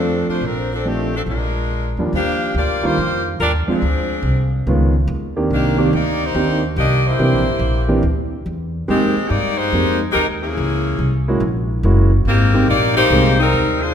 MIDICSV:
0, 0, Header, 1, 5, 480
1, 0, Start_track
1, 0, Key_signature, -3, "major"
1, 0, Tempo, 422535
1, 486, Time_signature, 4, 2, 24, 8
1, 15837, End_track
2, 0, Start_track
2, 0, Title_t, "Saxophone section"
2, 0, Program_c, 0, 65
2, 0, Note_on_c, 0, 53, 73
2, 0, Note_on_c, 0, 60, 69
2, 0, Note_on_c, 0, 62, 69
2, 0, Note_on_c, 0, 69, 83
2, 299, Note_off_c, 0, 53, 0
2, 300, Note_off_c, 0, 62, 0
2, 302, Note_off_c, 0, 60, 0
2, 304, Note_off_c, 0, 69, 0
2, 335, Note_on_c, 0, 65, 66
2, 336, Note_on_c, 0, 72, 80
2, 339, Note_on_c, 0, 62, 68
2, 341, Note_on_c, 0, 57, 63
2, 481, Note_off_c, 0, 65, 0
2, 481, Note_off_c, 0, 72, 0
2, 483, Note_off_c, 0, 62, 0
2, 484, Note_off_c, 0, 57, 0
2, 507, Note_on_c, 0, 70, 90
2, 509, Note_on_c, 0, 62, 79
2, 511, Note_on_c, 0, 60, 78
2, 512, Note_on_c, 0, 53, 72
2, 811, Note_off_c, 0, 53, 0
2, 814, Note_off_c, 0, 60, 0
2, 815, Note_off_c, 0, 70, 0
2, 816, Note_off_c, 0, 62, 0
2, 825, Note_on_c, 0, 53, 63
2, 828, Note_on_c, 0, 60, 58
2, 828, Note_on_c, 0, 69, 76
2, 833, Note_on_c, 0, 62, 65
2, 966, Note_off_c, 0, 53, 0
2, 968, Note_off_c, 0, 60, 0
2, 968, Note_off_c, 0, 69, 0
2, 971, Note_off_c, 0, 62, 0
2, 996, Note_on_c, 0, 57, 52
2, 996, Note_on_c, 0, 67, 73
2, 997, Note_on_c, 0, 51, 62
2, 998, Note_on_c, 0, 60, 63
2, 1300, Note_off_c, 0, 51, 0
2, 1300, Note_off_c, 0, 57, 0
2, 1300, Note_off_c, 0, 67, 0
2, 1301, Note_off_c, 0, 60, 0
2, 1309, Note_on_c, 0, 62, 66
2, 1312, Note_on_c, 0, 53, 60
2, 1313, Note_on_c, 0, 69, 74
2, 1316, Note_on_c, 0, 60, 68
2, 1377, Note_off_c, 0, 62, 0
2, 1379, Note_off_c, 0, 53, 0
2, 1380, Note_off_c, 0, 69, 0
2, 1382, Note_off_c, 0, 60, 0
2, 1464, Note_on_c, 0, 56, 64
2, 1465, Note_on_c, 0, 65, 67
2, 1466, Note_on_c, 0, 62, 66
2, 1469, Note_on_c, 0, 70, 74
2, 2210, Note_off_c, 0, 56, 0
2, 2210, Note_off_c, 0, 65, 0
2, 2211, Note_off_c, 0, 62, 0
2, 2212, Note_off_c, 0, 70, 0
2, 2432, Note_on_c, 0, 53, 80
2, 2436, Note_on_c, 0, 58, 70
2, 2437, Note_on_c, 0, 67, 89
2, 2438, Note_on_c, 0, 62, 74
2, 2869, Note_off_c, 0, 53, 0
2, 2871, Note_off_c, 0, 58, 0
2, 2871, Note_off_c, 0, 67, 0
2, 2872, Note_off_c, 0, 62, 0
2, 2914, Note_on_c, 0, 58, 76
2, 2914, Note_on_c, 0, 67, 77
2, 2915, Note_on_c, 0, 74, 86
2, 2917, Note_on_c, 0, 65, 74
2, 3199, Note_off_c, 0, 58, 0
2, 3199, Note_off_c, 0, 67, 0
2, 3200, Note_off_c, 0, 74, 0
2, 3201, Note_off_c, 0, 65, 0
2, 3227, Note_on_c, 0, 67, 86
2, 3228, Note_on_c, 0, 72, 97
2, 3229, Note_on_c, 0, 58, 88
2, 3233, Note_on_c, 0, 65, 84
2, 3698, Note_off_c, 0, 67, 0
2, 3699, Note_off_c, 0, 58, 0
2, 3699, Note_off_c, 0, 72, 0
2, 3701, Note_off_c, 0, 65, 0
2, 3855, Note_on_c, 0, 65, 69
2, 3860, Note_on_c, 0, 70, 89
2, 3863, Note_on_c, 0, 62, 75
2, 3865, Note_on_c, 0, 55, 67
2, 3998, Note_off_c, 0, 65, 0
2, 4001, Note_off_c, 0, 70, 0
2, 4004, Note_off_c, 0, 62, 0
2, 4005, Note_off_c, 0, 55, 0
2, 4191, Note_on_c, 0, 53, 62
2, 4191, Note_on_c, 0, 60, 58
2, 4192, Note_on_c, 0, 62, 68
2, 4192, Note_on_c, 0, 68, 67
2, 5095, Note_off_c, 0, 53, 0
2, 5095, Note_off_c, 0, 60, 0
2, 5095, Note_off_c, 0, 62, 0
2, 5095, Note_off_c, 0, 68, 0
2, 6274, Note_on_c, 0, 62, 69
2, 6277, Note_on_c, 0, 58, 70
2, 6278, Note_on_c, 0, 67, 75
2, 6280, Note_on_c, 0, 51, 74
2, 6709, Note_off_c, 0, 62, 0
2, 6711, Note_off_c, 0, 58, 0
2, 6711, Note_off_c, 0, 67, 0
2, 6712, Note_off_c, 0, 51, 0
2, 6749, Note_on_c, 0, 63, 75
2, 6751, Note_on_c, 0, 67, 66
2, 6758, Note_on_c, 0, 58, 73
2, 6762, Note_on_c, 0, 74, 86
2, 7058, Note_off_c, 0, 63, 0
2, 7059, Note_off_c, 0, 67, 0
2, 7062, Note_off_c, 0, 58, 0
2, 7064, Note_off_c, 0, 74, 0
2, 7082, Note_on_c, 0, 63, 87
2, 7083, Note_on_c, 0, 58, 83
2, 7084, Note_on_c, 0, 72, 100
2, 7085, Note_on_c, 0, 67, 75
2, 7545, Note_off_c, 0, 58, 0
2, 7545, Note_off_c, 0, 63, 0
2, 7546, Note_off_c, 0, 67, 0
2, 7546, Note_off_c, 0, 72, 0
2, 7699, Note_on_c, 0, 75, 97
2, 7700, Note_on_c, 0, 58, 76
2, 7700, Note_on_c, 0, 62, 79
2, 7700, Note_on_c, 0, 67, 83
2, 7991, Note_off_c, 0, 58, 0
2, 7991, Note_off_c, 0, 62, 0
2, 7991, Note_off_c, 0, 67, 0
2, 7991, Note_off_c, 0, 75, 0
2, 8028, Note_on_c, 0, 72, 85
2, 8031, Note_on_c, 0, 67, 78
2, 8034, Note_on_c, 0, 64, 74
2, 8037, Note_on_c, 0, 58, 76
2, 8977, Note_off_c, 0, 72, 0
2, 8978, Note_off_c, 0, 67, 0
2, 8980, Note_off_c, 0, 64, 0
2, 8981, Note_off_c, 0, 58, 0
2, 10093, Note_on_c, 0, 51, 83
2, 10095, Note_on_c, 0, 60, 74
2, 10098, Note_on_c, 0, 56, 83
2, 10099, Note_on_c, 0, 67, 92
2, 10532, Note_off_c, 0, 67, 0
2, 10537, Note_off_c, 0, 51, 0
2, 10537, Note_off_c, 0, 60, 0
2, 10539, Note_off_c, 0, 56, 0
2, 10546, Note_on_c, 0, 67, 81
2, 10549, Note_on_c, 0, 63, 74
2, 10549, Note_on_c, 0, 74, 91
2, 10557, Note_on_c, 0, 58, 81
2, 10857, Note_off_c, 0, 63, 0
2, 10862, Note_off_c, 0, 67, 0
2, 10870, Note_on_c, 0, 63, 88
2, 10875, Note_on_c, 0, 67, 79
2, 10876, Note_off_c, 0, 74, 0
2, 10877, Note_on_c, 0, 56, 85
2, 10877, Note_on_c, 0, 72, 102
2, 10880, Note_off_c, 0, 58, 0
2, 11357, Note_off_c, 0, 63, 0
2, 11359, Note_off_c, 0, 67, 0
2, 11360, Note_off_c, 0, 56, 0
2, 11360, Note_off_c, 0, 72, 0
2, 11496, Note_on_c, 0, 56, 76
2, 11500, Note_on_c, 0, 67, 75
2, 11500, Note_on_c, 0, 70, 85
2, 11504, Note_on_c, 0, 63, 69
2, 11646, Note_off_c, 0, 56, 0
2, 11649, Note_off_c, 0, 67, 0
2, 11649, Note_off_c, 0, 70, 0
2, 11652, Note_off_c, 0, 63, 0
2, 11823, Note_on_c, 0, 61, 63
2, 11828, Note_on_c, 0, 58, 62
2, 11828, Note_on_c, 0, 68, 82
2, 11830, Note_on_c, 0, 52, 66
2, 12747, Note_off_c, 0, 61, 0
2, 12749, Note_off_c, 0, 68, 0
2, 12750, Note_off_c, 0, 58, 0
2, 12751, Note_off_c, 0, 52, 0
2, 13944, Note_on_c, 0, 51, 78
2, 13946, Note_on_c, 0, 58, 85
2, 13946, Note_on_c, 0, 60, 87
2, 13949, Note_on_c, 0, 67, 88
2, 14381, Note_off_c, 0, 51, 0
2, 14382, Note_off_c, 0, 58, 0
2, 14382, Note_off_c, 0, 60, 0
2, 14384, Note_off_c, 0, 67, 0
2, 14412, Note_on_c, 0, 58, 86
2, 14415, Note_on_c, 0, 63, 85
2, 14415, Note_on_c, 0, 67, 85
2, 14415, Note_on_c, 0, 74, 99
2, 14704, Note_off_c, 0, 58, 0
2, 14705, Note_off_c, 0, 63, 0
2, 14705, Note_off_c, 0, 67, 0
2, 14705, Note_off_c, 0, 74, 0
2, 14721, Note_on_c, 0, 67, 91
2, 14723, Note_on_c, 0, 58, 96
2, 14723, Note_on_c, 0, 63, 89
2, 14725, Note_on_c, 0, 72, 106
2, 15168, Note_off_c, 0, 67, 0
2, 15169, Note_off_c, 0, 58, 0
2, 15169, Note_off_c, 0, 63, 0
2, 15170, Note_off_c, 0, 72, 0
2, 15217, Note_on_c, 0, 60, 77
2, 15219, Note_on_c, 0, 70, 99
2, 15220, Note_on_c, 0, 55, 83
2, 15220, Note_on_c, 0, 63, 87
2, 15656, Note_off_c, 0, 60, 0
2, 15657, Note_off_c, 0, 55, 0
2, 15657, Note_off_c, 0, 63, 0
2, 15657, Note_off_c, 0, 70, 0
2, 15687, Note_on_c, 0, 62, 75
2, 15693, Note_on_c, 0, 68, 80
2, 15696, Note_on_c, 0, 72, 78
2, 15697, Note_on_c, 0, 65, 69
2, 15837, Note_off_c, 0, 62, 0
2, 15837, Note_off_c, 0, 65, 0
2, 15837, Note_off_c, 0, 68, 0
2, 15837, Note_off_c, 0, 72, 0
2, 15837, End_track
3, 0, Start_track
3, 0, Title_t, "Grand piano"
3, 0, Program_c, 1, 0
3, 0, Note_on_c, 1, 53, 51
3, 0, Note_on_c, 1, 57, 43
3, 0, Note_on_c, 1, 60, 45
3, 0, Note_on_c, 1, 62, 59
3, 456, Note_off_c, 1, 60, 0
3, 457, Note_off_c, 1, 53, 0
3, 458, Note_off_c, 1, 62, 0
3, 459, Note_off_c, 1, 57, 0
3, 966, Note_on_c, 1, 53, 39
3, 969, Note_on_c, 1, 57, 42
3, 970, Note_on_c, 1, 60, 40
3, 974, Note_on_c, 1, 62, 49
3, 1253, Note_off_c, 1, 53, 0
3, 1255, Note_off_c, 1, 57, 0
3, 1256, Note_off_c, 1, 60, 0
3, 1257, Note_off_c, 1, 62, 0
3, 2255, Note_on_c, 1, 39, 48
3, 2262, Note_on_c, 1, 62, 53
3, 2263, Note_on_c, 1, 55, 46
3, 2265, Note_on_c, 1, 53, 47
3, 2267, Note_on_c, 1, 58, 45
3, 2397, Note_off_c, 1, 39, 0
3, 2401, Note_off_c, 1, 55, 0
3, 2401, Note_off_c, 1, 62, 0
3, 2402, Note_off_c, 1, 53, 0
3, 2403, Note_off_c, 1, 58, 0
3, 3213, Note_on_c, 1, 55, 56
3, 3219, Note_on_c, 1, 58, 53
3, 3219, Note_on_c, 1, 62, 55
3, 3221, Note_on_c, 1, 51, 60
3, 3221, Note_on_c, 1, 65, 74
3, 3357, Note_off_c, 1, 55, 0
3, 3359, Note_off_c, 1, 58, 0
3, 3360, Note_off_c, 1, 62, 0
3, 3361, Note_off_c, 1, 51, 0
3, 3361, Note_off_c, 1, 65, 0
3, 4178, Note_on_c, 1, 53, 52
3, 4179, Note_on_c, 1, 56, 55
3, 4181, Note_on_c, 1, 60, 53
3, 4182, Note_on_c, 1, 65, 55
3, 4183, Note_on_c, 1, 62, 49
3, 4319, Note_off_c, 1, 53, 0
3, 4320, Note_off_c, 1, 56, 0
3, 4321, Note_off_c, 1, 60, 0
3, 4321, Note_off_c, 1, 65, 0
3, 4322, Note_off_c, 1, 62, 0
3, 5307, Note_on_c, 1, 51, 56
3, 5310, Note_on_c, 1, 59, 55
3, 5313, Note_on_c, 1, 56, 54
3, 5317, Note_on_c, 1, 65, 56
3, 5320, Note_on_c, 1, 61, 48
3, 5585, Note_off_c, 1, 51, 0
3, 5587, Note_off_c, 1, 59, 0
3, 5588, Note_off_c, 1, 56, 0
3, 5590, Note_off_c, 1, 65, 0
3, 5592, Note_off_c, 1, 61, 0
3, 6095, Note_on_c, 1, 51, 57
3, 6096, Note_on_c, 1, 58, 51
3, 6098, Note_on_c, 1, 62, 50
3, 6099, Note_on_c, 1, 67, 61
3, 6104, Note_on_c, 1, 60, 48
3, 6544, Note_off_c, 1, 60, 0
3, 6545, Note_off_c, 1, 58, 0
3, 6547, Note_off_c, 1, 51, 0
3, 6554, Note_off_c, 1, 67, 0
3, 6556, Note_off_c, 1, 62, 0
3, 6561, Note_on_c, 1, 60, 60
3, 6562, Note_on_c, 1, 58, 67
3, 6564, Note_on_c, 1, 51, 69
3, 6571, Note_on_c, 1, 67, 69
3, 6573, Note_on_c, 1, 62, 60
3, 6710, Note_off_c, 1, 60, 0
3, 6711, Note_off_c, 1, 58, 0
3, 6712, Note_off_c, 1, 51, 0
3, 6715, Note_off_c, 1, 67, 0
3, 6716, Note_off_c, 1, 62, 0
3, 7214, Note_on_c, 1, 51, 59
3, 7214, Note_on_c, 1, 58, 47
3, 7215, Note_on_c, 1, 62, 51
3, 7217, Note_on_c, 1, 67, 53
3, 7220, Note_on_c, 1, 60, 49
3, 7498, Note_off_c, 1, 51, 0
3, 7498, Note_off_c, 1, 58, 0
3, 7498, Note_off_c, 1, 62, 0
3, 7500, Note_off_c, 1, 67, 0
3, 7501, Note_off_c, 1, 60, 0
3, 8165, Note_on_c, 1, 52, 54
3, 8169, Note_on_c, 1, 58, 45
3, 8170, Note_on_c, 1, 67, 58
3, 8173, Note_on_c, 1, 60, 56
3, 8176, Note_on_c, 1, 62, 52
3, 8453, Note_off_c, 1, 52, 0
3, 8455, Note_off_c, 1, 58, 0
3, 8456, Note_off_c, 1, 67, 0
3, 8457, Note_off_c, 1, 60, 0
3, 8458, Note_off_c, 1, 62, 0
3, 8955, Note_on_c, 1, 58, 47
3, 8957, Note_on_c, 1, 52, 63
3, 8962, Note_on_c, 1, 62, 55
3, 8962, Note_on_c, 1, 67, 66
3, 8965, Note_on_c, 1, 60, 60
3, 9107, Note_off_c, 1, 58, 0
3, 9108, Note_off_c, 1, 52, 0
3, 9110, Note_off_c, 1, 62, 0
3, 9110, Note_off_c, 1, 67, 0
3, 9112, Note_off_c, 1, 60, 0
3, 10087, Note_on_c, 1, 63, 44
3, 10089, Note_on_c, 1, 56, 58
3, 10089, Note_on_c, 1, 58, 47
3, 10089, Note_on_c, 1, 60, 48
3, 10091, Note_on_c, 1, 67, 52
3, 10373, Note_off_c, 1, 63, 0
3, 10374, Note_off_c, 1, 56, 0
3, 10374, Note_off_c, 1, 58, 0
3, 10374, Note_off_c, 1, 60, 0
3, 10375, Note_off_c, 1, 67, 0
3, 11064, Note_on_c, 1, 58, 46
3, 11064, Note_on_c, 1, 60, 44
3, 11065, Note_on_c, 1, 56, 46
3, 11073, Note_on_c, 1, 67, 51
3, 11074, Note_on_c, 1, 63, 46
3, 11341, Note_off_c, 1, 58, 0
3, 11341, Note_off_c, 1, 60, 0
3, 11342, Note_off_c, 1, 56, 0
3, 11346, Note_off_c, 1, 63, 0
3, 11346, Note_off_c, 1, 67, 0
3, 12815, Note_on_c, 1, 56, 59
3, 12816, Note_on_c, 1, 64, 52
3, 12820, Note_on_c, 1, 58, 51
3, 12820, Note_on_c, 1, 61, 55
3, 12822, Note_on_c, 1, 66, 70
3, 12955, Note_off_c, 1, 56, 0
3, 12955, Note_off_c, 1, 64, 0
3, 12957, Note_off_c, 1, 58, 0
3, 12957, Note_off_c, 1, 61, 0
3, 12958, Note_off_c, 1, 66, 0
3, 13455, Note_on_c, 1, 58, 46
3, 13456, Note_on_c, 1, 56, 51
3, 13459, Note_on_c, 1, 61, 46
3, 13460, Note_on_c, 1, 64, 48
3, 13461, Note_on_c, 1, 66, 59
3, 13736, Note_off_c, 1, 56, 0
3, 13736, Note_off_c, 1, 58, 0
3, 13738, Note_off_c, 1, 61, 0
3, 13738, Note_off_c, 1, 64, 0
3, 13739, Note_off_c, 1, 66, 0
3, 14244, Note_on_c, 1, 56, 60
3, 14245, Note_on_c, 1, 58, 60
3, 14248, Note_on_c, 1, 63, 51
3, 14253, Note_on_c, 1, 60, 53
3, 14254, Note_on_c, 1, 67, 64
3, 14389, Note_off_c, 1, 56, 0
3, 14389, Note_off_c, 1, 58, 0
3, 14391, Note_off_c, 1, 63, 0
3, 14393, Note_off_c, 1, 60, 0
3, 14394, Note_off_c, 1, 67, 0
3, 14898, Note_on_c, 1, 58, 45
3, 14906, Note_on_c, 1, 56, 53
3, 14907, Note_on_c, 1, 60, 50
3, 14907, Note_on_c, 1, 63, 54
3, 14908, Note_on_c, 1, 68, 67
3, 15177, Note_off_c, 1, 58, 0
3, 15181, Note_off_c, 1, 56, 0
3, 15181, Note_off_c, 1, 60, 0
3, 15181, Note_off_c, 1, 63, 0
3, 15181, Note_off_c, 1, 68, 0
3, 15837, End_track
4, 0, Start_track
4, 0, Title_t, "Upright bass"
4, 0, Program_c, 2, 32
4, 0, Note_on_c, 2, 41, 84
4, 268, Note_off_c, 2, 41, 0
4, 468, Note_on_c, 2, 34, 73
4, 1393, Note_off_c, 2, 34, 0
4, 1435, Note_on_c, 2, 34, 73
4, 2196, Note_off_c, 2, 34, 0
4, 2238, Note_on_c, 2, 40, 64
4, 2393, Note_off_c, 2, 40, 0
4, 2416, Note_on_c, 2, 39, 74
4, 2879, Note_off_c, 2, 39, 0
4, 2891, Note_on_c, 2, 38, 78
4, 3186, Note_off_c, 2, 38, 0
4, 3382, Note_on_c, 2, 41, 84
4, 3843, Note_off_c, 2, 41, 0
4, 3860, Note_on_c, 2, 39, 90
4, 4152, Note_off_c, 2, 39, 0
4, 4339, Note_on_c, 2, 38, 80
4, 4793, Note_off_c, 2, 38, 0
4, 4800, Note_on_c, 2, 36, 85
4, 5271, Note_off_c, 2, 36, 0
4, 5301, Note_on_c, 2, 37, 83
4, 5759, Note_off_c, 2, 37, 0
4, 5766, Note_on_c, 2, 39, 96
4, 6233, Note_off_c, 2, 39, 0
4, 6252, Note_on_c, 2, 36, 75
4, 6717, Note_off_c, 2, 36, 0
4, 6734, Note_on_c, 2, 38, 83
4, 7198, Note_off_c, 2, 38, 0
4, 7209, Note_on_c, 2, 39, 89
4, 7675, Note_off_c, 2, 39, 0
4, 7684, Note_on_c, 2, 36, 86
4, 8152, Note_off_c, 2, 36, 0
4, 8168, Note_on_c, 2, 36, 73
4, 8322, Note_off_c, 2, 36, 0
4, 8322, Note_on_c, 2, 34, 55
4, 8469, Note_off_c, 2, 34, 0
4, 8476, Note_on_c, 2, 31, 58
4, 8618, Note_off_c, 2, 31, 0
4, 8625, Note_on_c, 2, 34, 82
4, 9102, Note_off_c, 2, 34, 0
4, 9117, Note_on_c, 2, 38, 79
4, 9588, Note_off_c, 2, 38, 0
4, 9607, Note_on_c, 2, 40, 79
4, 10073, Note_off_c, 2, 40, 0
4, 10096, Note_on_c, 2, 41, 75
4, 10387, Note_off_c, 2, 41, 0
4, 10566, Note_on_c, 2, 43, 84
4, 11031, Note_off_c, 2, 43, 0
4, 11044, Note_on_c, 2, 41, 78
4, 11511, Note_off_c, 2, 41, 0
4, 11528, Note_on_c, 2, 39, 90
4, 11992, Note_off_c, 2, 39, 0
4, 12011, Note_on_c, 2, 37, 83
4, 12474, Note_off_c, 2, 37, 0
4, 12480, Note_on_c, 2, 36, 87
4, 12948, Note_off_c, 2, 36, 0
4, 12953, Note_on_c, 2, 34, 84
4, 13424, Note_off_c, 2, 34, 0
4, 13442, Note_on_c, 2, 30, 94
4, 13909, Note_off_c, 2, 30, 0
4, 13915, Note_on_c, 2, 32, 75
4, 14385, Note_off_c, 2, 32, 0
4, 14405, Note_on_c, 2, 34, 79
4, 14869, Note_off_c, 2, 34, 0
4, 14885, Note_on_c, 2, 36, 93
4, 15349, Note_off_c, 2, 36, 0
4, 15368, Note_on_c, 2, 39, 86
4, 15831, Note_off_c, 2, 39, 0
4, 15837, End_track
5, 0, Start_track
5, 0, Title_t, "Muted upright bass strokes"
5, 325, Note_on_c, 9, 29, 38
5, 438, Note_off_c, 9, 29, 0
5, 3221, Note_on_c, 9, 29, 39
5, 3334, Note_off_c, 9, 29, 0
5, 4180, Note_on_c, 9, 29, 38
5, 4294, Note_off_c, 9, 29, 0
5, 10407, Note_on_c, 9, 29, 35
5, 10520, Note_off_c, 9, 29, 0
5, 15837, End_track
0, 0, End_of_file